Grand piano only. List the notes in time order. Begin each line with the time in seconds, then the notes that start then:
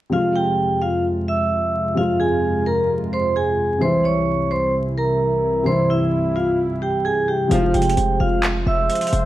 0.10 C3 F3
0.14 G#3 F4
1.94 C3 F3
1.98 G#3 F4
3.78 C3 E3
3.82 G3 E4
5.63 C3 E3
5.67 G3 E4
7.48 C3 F3 G#3
7.52 F4 C5